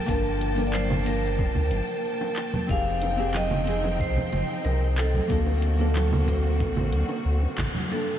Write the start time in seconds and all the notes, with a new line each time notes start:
Already playing: F3 A#3 G5 A5
0.06 G1 A#3 D4 F4 A#4 A5, kick, high bongo, cabasa
0.41 closed hi-hat, cabasa
0.55 A#3 D4 F4 A#4, high bongo, cabasa
0.67 D5
0.73 C5, clap, high conga, cabasa
0.90 high bongo, low conga
1.02 A#3 D4, closed hi-hat
1.07 F4 A#4 C5, cabasa
1.24 cabasa
1.38 F1, kick, high bongo, cabasa
1.55 D2, low conga
1.71 G1, closed hi-hat, high bongo, high conga, cabasa
1.89 cabasa
2.04 cabasa
2.21 high bongo
2.36 clap, closed hi-hat, cabasa
2.53 high bongo, high conga, low conga, cabasa
2.67 F1 F3 C4 D#4 G4 G#4 F5 G5, kick, cabasa
3.02 closed hi-hat, high bongo, cabasa
3.16 C4 D#4 G4 G#4, cabasa
3.34 D#5, clap, high bongo, high conga, cabasa
3.51 low conga
3.65 C4 D#4 G#4, closed hi-hat, cabasa
3.84 high bongo, cabasa
3.99 C2 C5, kick, cabasa
4.16 high bongo, low conga
4.32 F1, closed hi-hat, high conga, low conga, cabasa
4.50 cabasa
4.64 C2 A#4, high bongo, cabasa
4.98 A4, clap, closed hi-hat, high bongo, cabasa
5.14 high conga, low conga, cabasa
5.28 D2 D3 A#3 C4 F#4 A4, kick, cabasa
5.46 high bongo
5.62 closed hi-hat, cabasa
5.77 A#3 C4 F#4 A4, high bongo, cabasa
5.96 clap, high conga, cabasa
6.12 low conga
6.24 A#3 C4
6.28 F#4 C5, kick, closed hi-hat, high bongo, cabasa
6.46 cabasa
6.60 C2, kick, high bongo, cabasa
6.76 A1, low conga
6.92 D2, closed hi-hat, high conga, cabasa
7.09 high bongo, cabasa
7.25 D2, cabasa
7.43 high bongo
7.58 A1, kick, clap, closed hi-hat, low conga, cabasa
7.75 high conga, low conga, cabasa
7.87 G2 A#3 D4
7.91 G3 A#3 F4 A4 A5, cabasa